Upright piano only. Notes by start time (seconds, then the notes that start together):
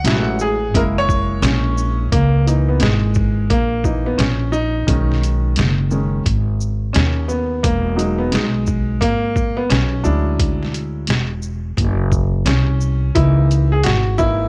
Already playing: F#5
0.05 F#3 G#3 C#4 E4
0.41 G#4
0.74 G#3 A#3 E4 A#4
0.98 C#5
1.42 C#4
2.12 A#3
2.47 E3 A#3 D#4
2.69 B3
2.81 G#3
3.50 A#3
3.84 E3 A#3 D#4
4.06 B3
4.18 C#4
4.52 D#4
4.87 D#3 G#3 C#4
5.91 D#3 G#3 C#4
6.93 C#4
7.28 B3
7.63 A#3
7.96 F#3 G#3 D#4
8.18 B3
8.32 G#3
9.01 A#3
9.57 B3
9.70 C#4
10.03 F#3 G#3 C#4 D4 E4
12.46 C#4
13.15 E3 A#3 D#4 E4
13.72 G#4
13.84 F#4
14.18 E3 A#3 D#4 E4